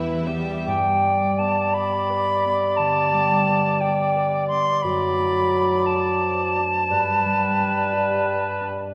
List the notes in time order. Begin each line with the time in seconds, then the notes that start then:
Already playing: E2 E3 G3 B3 E4 G4 B4 E5
0.26 G3 B3 G4 E5
0.66 G2 G3 D5 G5
1.03 G3
1.39 B3 A5
1.74 G4 B5
2.09 B4
2.44 B3
2.77 D3 A5
3.13 G3
3.47 B3
3.80 G4 G5
4.15 B4
4.48 B3 C6
4.82 F#2 F#3 D5 B5
5.19 A3
5.53 D4
5.86 A5
6.22 C5
6.56 D4
6.90 G2 G3 B4
7.25 G3
7.59 D4
7.93 G4
8.26 B4
8.60 D4